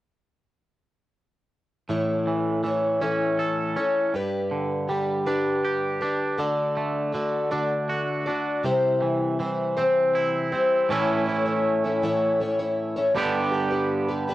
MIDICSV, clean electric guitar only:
0, 0, Header, 1, 2, 480
1, 0, Start_track
1, 0, Tempo, 750000
1, 1212, Time_signature, 6, 3, 24, 8
1, 9180, End_track
2, 0, Start_track
2, 0, Title_t, "Clean electric guitar"
2, 0, Program_c, 0, 27
2, 1211, Note_on_c, 0, 45, 58
2, 1454, Note_on_c, 0, 52, 60
2, 1680, Note_off_c, 0, 52, 0
2, 1687, Note_on_c, 0, 52, 51
2, 1930, Note_on_c, 0, 61, 55
2, 2169, Note_on_c, 0, 69, 62
2, 2399, Note_off_c, 0, 61, 0
2, 2407, Note_on_c, 0, 61, 60
2, 2411, Note_off_c, 0, 45, 0
2, 2649, Note_off_c, 0, 52, 0
2, 2649, Note_off_c, 0, 61, 0
2, 2649, Note_on_c, 0, 43, 57
2, 2650, Note_off_c, 0, 69, 0
2, 2888, Note_on_c, 0, 50, 56
2, 3130, Note_on_c, 0, 55, 52
2, 3372, Note_on_c, 0, 62, 59
2, 3613, Note_on_c, 0, 67, 61
2, 3844, Note_off_c, 0, 62, 0
2, 3850, Note_off_c, 0, 43, 0
2, 3852, Note_on_c, 0, 62, 60
2, 4083, Note_off_c, 0, 50, 0
2, 4088, Note_off_c, 0, 55, 0
2, 4091, Note_on_c, 0, 50, 60
2, 4092, Note_off_c, 0, 62, 0
2, 4092, Note_off_c, 0, 67, 0
2, 4333, Note_on_c, 0, 57, 60
2, 4563, Note_off_c, 0, 50, 0
2, 4570, Note_on_c, 0, 50, 51
2, 4811, Note_on_c, 0, 62, 59
2, 5053, Note_on_c, 0, 66, 61
2, 5288, Note_off_c, 0, 62, 0
2, 5296, Note_on_c, 0, 62, 54
2, 5532, Note_off_c, 0, 50, 0
2, 5533, Note_off_c, 0, 57, 0
2, 5533, Note_off_c, 0, 66, 0
2, 5533, Note_on_c, 0, 48, 62
2, 5535, Note_off_c, 0, 62, 0
2, 5772, Note_on_c, 0, 52, 60
2, 6007, Note_off_c, 0, 52, 0
2, 6015, Note_on_c, 0, 52, 53
2, 6257, Note_on_c, 0, 60, 62
2, 6496, Note_on_c, 0, 64, 67
2, 6727, Note_off_c, 0, 60, 0
2, 6735, Note_off_c, 0, 48, 0
2, 6735, Note_on_c, 0, 60, 54
2, 6969, Note_off_c, 0, 52, 0
2, 6970, Note_on_c, 0, 45, 74
2, 6975, Note_off_c, 0, 60, 0
2, 6975, Note_off_c, 0, 64, 0
2, 6977, Note_on_c, 0, 52, 78
2, 6980, Note_on_c, 0, 57, 80
2, 6985, Note_on_c, 0, 61, 83
2, 6990, Note_on_c, 0, 64, 84
2, 8400, Note_off_c, 0, 45, 0
2, 8403, Note_off_c, 0, 52, 0
2, 8405, Note_off_c, 0, 57, 0
2, 8407, Note_off_c, 0, 61, 0
2, 8410, Note_off_c, 0, 64, 0
2, 8415, Note_on_c, 0, 43, 80
2, 8420, Note_on_c, 0, 50, 81
2, 8423, Note_on_c, 0, 55, 83
2, 8429, Note_on_c, 0, 59, 89
2, 8432, Note_on_c, 0, 62, 85
2, 8436, Note_on_c, 0, 67, 86
2, 9180, Note_off_c, 0, 43, 0
2, 9180, Note_off_c, 0, 50, 0
2, 9180, Note_off_c, 0, 55, 0
2, 9180, Note_off_c, 0, 59, 0
2, 9180, Note_off_c, 0, 62, 0
2, 9180, Note_off_c, 0, 67, 0
2, 9180, End_track
0, 0, End_of_file